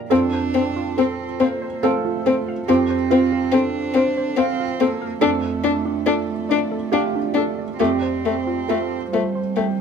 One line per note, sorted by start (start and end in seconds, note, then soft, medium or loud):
0.00 0.11 A#3 medium
0.00 0.12 G4 medium
0.00 0.12 A#4 soft
0.00 0.11 D5 medium
0.00 0.12 D5 soft
0.00 0.13 F5 soft
0.10 2.65 F2 soft
0.10 0.19 C4 soft
0.10 1.02 D4 medium
0.10 0.24 F4 medium
0.10 5.19 F4 medium
0.10 0.96 A4 medium
0.10 5.23 A4 medium
0.10 5.23 C5 medium
0.33 0.46 C5 medium
0.54 1.23 C4 soft
0.54 0.62 C4 soft
0.76 0.89 F4 medium
0.97 1.06 C4 soft
0.97 1.44 C4 soft
0.97 1.66 A4 soft
0.97 1.11 A4 medium
1.40 1.86 A#3 soft
1.40 1.48 C4 soft
1.40 1.54 F4 medium
1.40 1.80 C5 medium
1.62 1.75 C5 medium
1.83 2.69 A3 soft
1.83 1.91 C4 soft
1.83 2.24 A4 medium
1.83 2.51 F5 soft
2.05 2.17 F4 medium
2.26 2.34 C4 soft
2.26 2.93 A4 soft
2.26 2.39 C5 soft
2.48 2.61 F5 medium
2.68 5.18 F2 soft
2.68 2.77 C4 soft
2.68 3.56 C4 medium
2.68 2.82 F4 medium
2.68 3.07 G4 medium
2.90 3.03 C5 medium
3.10 3.78 C4 soft
3.10 3.19 C4 soft
3.10 3.91 F4 medium
3.32 3.45 F4 medium
3.52 3.60 C4 soft
3.52 4.40 D4 medium
3.52 4.21 A4 soft
3.52 3.66 A4 medium
3.94 4.02 C4 soft
3.94 4.09 F4 medium
3.94 4.64 C5 soft
4.17 4.30 C5 medium
4.37 4.45 C4 soft
4.37 4.83 C4 medium
4.37 5.05 F5 soft
4.60 4.72 F4 medium
4.80 5.21 A#3 medium
4.80 4.88 C4 soft
4.80 5.19 A4 medium
4.80 4.93 C5 medium
5.02 5.14 F5 medium
5.21 7.75 F2 medium
5.21 9.81 A3 medium
5.21 7.75 A3 medium
5.21 5.30 D4 medium
5.21 5.34 D4 medium
5.21 7.75 F4 medium
5.21 6.05 A4 medium
5.21 7.79 D5 medium
5.43 5.56 A4 medium
5.64 5.72 D4 soft
5.64 6.32 D4 soft
5.85 5.98 D4 medium
6.06 6.14 D4 medium
6.06 6.19 F4 medium
6.06 6.74 A4 soft
6.49 6.62 D4 medium
6.49 6.59 D4 soft
6.49 7.18 D5 soft
6.72 6.84 A4 medium
6.92 7.01 D4 soft
6.92 7.75 G4 medium
6.92 7.62 F5 soft
7.15 7.28 D4 medium
7.34 7.42 D4 soft
7.34 7.80 A4 soft
7.34 7.50 A4 medium
7.59 7.71 D5 soft
7.79 9.81 F2 soft
7.79 7.88 A3 soft
7.79 9.11 C4 soft
7.79 7.93 F4 medium
7.79 8.64 G4 medium
7.79 9.81 G4 medium
7.79 9.81 C5 medium
8.02 8.15 C5 medium
8.24 8.34 A3 soft
8.24 8.95 C4 soft
8.47 8.60 F4 medium
8.68 8.78 A3 soft
8.68 9.81 F4 soft
8.68 9.39 A4 soft
8.68 8.82 A4 medium
9.12 9.81 G3 soft
9.12 9.22 A3 soft
9.12 9.26 F4 medium
9.12 9.81 C5 soft
9.35 9.48 C5 soft
9.56 9.64 A3 soft
9.56 9.81 G5 soft